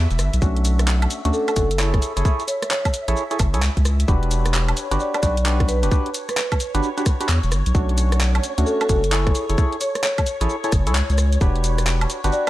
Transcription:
Already playing: E5
0.11 E1, closed hi-hat, shaker
0.19 G1, cross-stick, open hi-hat, shaker
0.33 B1, closed hi-hat, shaker
0.42 B1 A3 C#4 D4 F#4, kick, shaker
0.56 closed hi-hat
0.65 open hi-hat, shaker
0.79 cross-stick, closed hi-hat, shaker
0.88 clap, shaker
1.02 closed hi-hat, high woodblock
1.11 open hi-hat, shaker
1.25 D2 A3 C#4 D4 F#4, closed hi-hat, shaker
1.33 A4, shaker
1.48 A4, cross-stick, closed hi-hat, high woodblock, shaker
1.56 F#1 A3 C#4 D4 F#4 A4, kick, open hi-hat, shaker
1.71 closed hi-hat, shaker
1.79 E4 G#4 A4 C#5, clap, shaker
1.94 kick, cross-stick, closed hi-hat
2.02 open hi-hat, shaker
2.17 F#1 E4 G#4 A4 C#5, closed hi-hat, shaker
2.25 E4 G#4 A4 C#5, kick, shaker
2.40 closed hi-hat, shaker
2.48 C#5, open hi-hat, shaker
2.62 cross-stick, closed hi-hat, shaker
2.71 C#5, clap, shaker
2.85 kick, closed hi-hat, high woodblock, shaker
2.94 open hi-hat, shaker
3.08 A1 E4 G#4 A4 C#5, closed hi-hat, shaker
3.16 shaker
3.31 E4 G#4 A4 C#5, closed hi-hat, shaker
3.39 F#1, kick, cross-stick, open hi-hat, high woodblock, shaker
3.54 C#2 E4 G#4 A4 C#5, closed hi-hat, shaker
3.62 clap, shaker
3.77 C#2, kick, closed hi-hat, shaker
3.85 cross-stick, open hi-hat, shaker
4.00 closed hi-hat, shaker
4.08 E1 D4 F#4 G4 B4 C#5, kick, shaker
4.23 closed hi-hat
4.31 open hi-hat, shaker
4.46 cross-stick, closed hi-hat, shaker
4.54 clap, shaker
4.69 closed hi-hat, high woodblock
4.77 open hi-hat, shaker
4.91 G1 D4 F#4 G4 B4, closed hi-hat, shaker
5.00 D5, shaker
5.14 D5, cross-stick, closed hi-hat, high woodblock, shaker
5.23 B1 D4 F#4 G4 B4 D5, kick, open hi-hat, shaker
5.37 closed hi-hat, shaker
5.45 D4 F#4 G4 B4, clap, shaker
5.60 kick, cross-stick, closed hi-hat
5.68 B4, open hi-hat, shaker
5.83 E1 D4 F#4 G4 B4, closed hi-hat, shaker
5.91 D4 F#4 G4 B4, kick, shaker
6.06 closed hi-hat
6.14 open hi-hat, shaker
6.29 B4, cross-stick, closed hi-hat, shaker
6.37 clap, shaker
6.52 kick, closed hi-hat, high woodblock, shaker
6.60 open hi-hat, shaker
6.75 G1 D4 F#4 G4 B4, closed hi-hat, shaker
6.83 shaker
6.97 D4 F#4 G4 B4, closed hi-hat, shaker
7.06 kick, cross-stick, open hi-hat, shaker
7.20 D4 F#4 G4 B4, closed hi-hat, shaker
7.29 E2, clap, shaker
7.43 E1, closed hi-hat, shaker
7.52 G1, cross-stick, open hi-hat, shaker
7.66 B1, closed hi-hat, shaker
7.75 B1 A3 C#4 D4 F#4, kick, shaker
7.89 closed hi-hat
7.98 open hi-hat, shaker
8.12 cross-stick, closed hi-hat, shaker
8.21 clap, shaker
8.35 closed hi-hat, high woodblock
8.44 open hi-hat, shaker
8.58 D2 A3 C#4 D4 F#4, closed hi-hat, shaker
8.66 A4, shaker
8.81 A4, cross-stick, closed hi-hat, high woodblock, shaker
8.89 F#1 A3 C#4 D4 F#4 A4, kick, open hi-hat, shaker
9.04 closed hi-hat, shaker
9.12 E4 G#4 A4 C#5, clap, shaker
9.27 kick, cross-stick, closed hi-hat
9.35 open hi-hat, shaker
9.49 F#1 E4 G#4 A4 C#5, closed hi-hat, shaker
9.58 E4 G#4 A4 C#5, kick, shaker
9.72 closed hi-hat
9.81 C#5, open hi-hat, shaker
9.95 cross-stick, closed hi-hat, shaker
10.04 C#5, clap, shaker
10.18 kick, closed hi-hat, high woodblock, shaker
10.27 open hi-hat, shaker
10.41 A1 E4 G#4 A4 C#5, closed hi-hat, shaker
10.49 shaker
10.64 E4 G#4 A4 C#5, closed hi-hat, shaker
10.72 F#1, kick, cross-stick, open hi-hat, shaker
10.87 C#2 E4 G#4 A4 C#5, closed hi-hat, shaker
10.95 clap, shaker
11.10 C#2, closed hi-hat, shaker
11.18 cross-stick, open hi-hat, shaker
11.33 closed hi-hat, shaker
11.41 E1 D4 F#4 G4 B4, kick, shaker
11.56 closed hi-hat
11.64 open hi-hat, shaker
11.78 cross-stick, closed hi-hat, shaker
11.87 clap, shaker
12.01 closed hi-hat, high woodblock
12.10 open hi-hat, shaker
12.24 G1 D4 F#4 G4 B4, closed hi-hat, shaker
12.33 D5, shaker

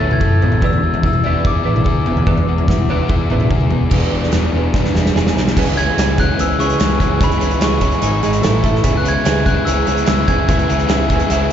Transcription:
Already playing: B3 A4 C#5 A6
0.00 D2 E3 B3 C#4 E4
0.11 G#6, mid tom
0.20 F#2 E3 B3 A4, kick
0.42 A1 E3 B3, floor tom
0.52 floor tom
0.61 E1 E3 B3 D4, kick, floor tom
0.66 E6
0.73 floor tom
0.83 E3 B3
0.94 floor tom
1.03 E1 E3 B3 E4 E6, kick
1.13 mid tom
1.24 E3 B3 D4 D5, floor tom
1.45 E1 B3 G#4 D6, kick, floor tom
1.64 A1 E3 B3 D4 E4
1.76 mid tom
1.84 D2 E3 B3 G#4, kick
2.06 E1 E3 B3, floor tom
2.17 floor tom
2.26 E1 E3 B3 D4, kick, floor tom
2.38 floor tom
2.47 E3 B3
2.58 floor tom
2.68 E1 E3 B3 E4, kick, snare
2.78 floor tom, mid tom
2.89 E3 B3 D4 D5, floor tom
3.08 E1 E3 B3 G#4, kick, floor tom
3.29 A1 E3 B3 D4 E4, floor tom
3.40 mid tom
3.51 D2 E3 B3 G#4, kick
3.61 mid tom
3.69 E1 E3 B3, floor tom
3.90 E1 E3 B3 D4 G#4, kick, crash
4.12 E1 D4
4.23 snare
4.32 E1 E3 B3 D4 G#4, snare, closed hi-hat
4.52 E1 B3 D4 G#4
4.73 E1 E3 B3 D4 G#4, kick, snare
4.85 snare
4.94 E1 B3 D4 G#4, snare
5.06 snare
5.15 E1 E3 B3 D4 G#4, snare
5.27 snare
5.37 B1 D4, snare
5.47 snare
5.56 C#2 C#3 E3 G#3 B3 C#4 G#4, kick, crash
5.76 C#3 E3 G#3 B3 C#4 G#4 G#6, closed hi-hat
5.97 C#2 C#3 E3 G#3 B3 C#4 G#4, snare, closed hi-hat
6.18 C#3 E3 G#3 B3 C#4 G#4 F#6, kick, closed hi-hat
6.37 C#2 C#3 E3 G#3 B3 C#4 G#4 E6, closed hi-hat
6.58 C#2 C#3 E3 G#3 B3 C#4 G#4 C#6, closed hi-hat
6.69 closed hi-hat
6.79 C#2 C#3 E3 G#3 B3 C#4 G#4, snare, closed hi-hat
6.99 C#2 C#3 E3 G#3 B3 C#4 G#4, kick, closed hi-hat
7.19 C#2 C#3 E3 G#3 B3 C#4 G#4, kick, closed hi-hat
7.24 B5
7.32 closed hi-hat
7.40 C#2 C#3 E3 G#3 B3 C#4 G#4, closed hi-hat
7.51 closed hi-hat
7.59 C#2 C#3 E3 G#3 B3 C#4 G#4, snare, closed hi-hat
7.64 C#6
7.80 C#3 E3 G#3 B3 C#4 G#4, kick, closed hi-hat
7.91 closed hi-hat
8.01 G#1 G#2 D#3 G#3 D#4 G#4, closed hi-hat
8.22 G#1 G#2 D#3 G#3 D#4 G#4, closed hi-hat
8.33 closed hi-hat
8.41 A1 A2 E3 A3 E4 A4, snare, closed hi-hat
8.62 A1 A2 E3 A3 E4 A4, kick, closed hi-hat
8.75 snare
8.83 C#2 C#3 G#3 B3 C#4 E4 G#4, kick, closed hi-hat
8.97 F#6
9.03 C#3 G#3 B3 C#4 E4 G#4, closed hi-hat
9.08 G#6
9.24 C#2 C#3 G#3 B3 C#4 E4 G#4, snare, closed hi-hat
9.44 C#3 G#3 B3 C#4 E4 G#4 F#6, kick, closed hi-hat
9.57 F#6
9.65 C#2 C#3 G#3 B3 C#4 E4 G#4 E6, closed hi-hat
9.87 C#2 C#3 G#3 B3 C#4 E4 G#4, closed hi-hat
9.97 closed hi-hat
10.06 C#2 C#3 G#3 B3 C#4 E4 G#4 E6, snare, closed hi-hat
10.27 C#2 C#3 G#3 B3 C#4 E4 G#4 G#6, kick, closed hi-hat
10.47 C#2 C#3 G#3 B3 C#4 E4 G#4, kick, closed hi-hat
10.59 closed hi-hat
10.67 C#2 C#3 G#3 B3 C#4 E4 G#4, closed hi-hat
10.71 E4 G#4
10.79 closed hi-hat
10.86 C#2 C#3 G#3 B3 C#4 E4 G#4, snare, closed hi-hat
11.09 C#3 G#3 B3 C#4 E4 G#4, kick, closed hi-hat
11.19 closed hi-hat
11.30 C#2 C#3 G#3 B3 C#4 E4 G#4, closed hi-hat

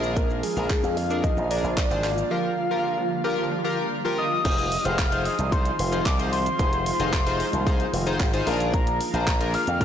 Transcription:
Already playing: A#1 D3 F3 G#3 A#3 D4 F4 G#4 A#4
0.03 shaker
0.16 F3 A#4, kick, closed hi-hat, shaker
0.30 shaker
0.43 G#4, open hi-hat, shaker
0.57 A#1 F3 D4 G#4 A#4, shaker
0.70 kick, clap, closed hi-hat, shaker
0.83 F2 F3, shaker
0.97 F5, open hi-hat, shaker
1.10 D4 G#4 A#4, shaker
1.24 F3 D#5, kick, closed hi-hat, shaker
1.37 A#1 F3, shaker
1.50 D4 G#4 A#4 D5, open hi-hat, shaker
1.64 A#1, shaker
1.77 kick, clap, closed hi-hat, shaker
1.90 G#1 F3 D4 G#4 C5, shaker
2.04 F4 D5, clap, open hi-hat, shaker
2.18 shaker
2.31 F3 G3 F4 G4 A#4 F5
2.71 F3 F4 G4 A#4
2.98 F3
3.24 D4 F4 G4 A#4
3.38 F3
3.51 F3
3.64 F4 G4 A#4
4.05 F3 F4 G4 A#4
4.18 F4 D#6
4.44 F1 D#3 F3 G#3 C4 D#4 F4 G#4 C5, kick, closed hi-hat, crash, shaker
4.58 closed hi-hat, shaker
4.72 open hi-hat, shaker
4.85 F1 D#4 F4 G#4 C5 F6, closed hi-hat, shaker
4.99 kick, clap, closed hi-hat, shaker
5.12 D#4 F4 G#4 C5, closed hi-hat, shaker
5.25 D#6, open hi-hat, shaker
5.39 C2, closed hi-hat, shaker
5.52 D#4 F4 G#4 C5 C6, kick, closed hi-hat, shaker
5.65 closed hi-hat, shaker
5.79 F1 C6, open hi-hat, shaker
5.92 D#4 F4 G#4 C5, closed hi-hat, shaker
6.06 C2 D6, kick, clap, closed hi-hat, shaker
6.19 D#4 F4 G#4 C5, closed hi-hat, shaker
6.32 C6, open hi-hat, shaker
6.46 closed hi-hat, shaker
6.59 F1 A#3 D#4 F4 G#4 C5, kick, closed hi-hat, shaker
6.73 closed hi-hat, shaker
6.86 open hi-hat, shaker
7.00 F1 D#4 F4 G#4 C5, closed hi-hat, shaker
7.13 kick, clap, closed hi-hat, shaker
7.26 D#4 F4 G#4 C5, closed hi-hat, shaker
7.40 open hi-hat, shaker
7.53 C2, closed hi-hat, shaker
7.66 D#4 F4 G#4 C5, kick, closed hi-hat, shaker
7.80 closed hi-hat, shaker
7.93 F1, open hi-hat, shaker
8.06 D#4 F4 G#4 C5, closed hi-hat, shaker
8.20 G#1, kick, clap, closed hi-hat, shaker
8.33 D#4 F4 G#4 C5, closed hi-hat, shaker
8.47 A#1 D3 F3 G#3 D4 F4 G#4 A#4, open hi-hat, shaker
8.60 closed hi-hat, shaker
8.74 A#5, kick, closed hi-hat, shaker
8.87 closed hi-hat, shaker
9.01 open hi-hat, shaker
9.13 A#1 D4 F4 G#4 C5 A#5, closed hi-hat, shaker
9.27 kick, clap, closed hi-hat, shaker
9.40 D4 F4 G#4 A#4, closed hi-hat, shaker
9.54 F6, open hi-hat, shaker
9.67 F2, closed hi-hat, shaker
9.80 D4 F4 G#4 A#4 F6, kick, closed hi-hat, shaker

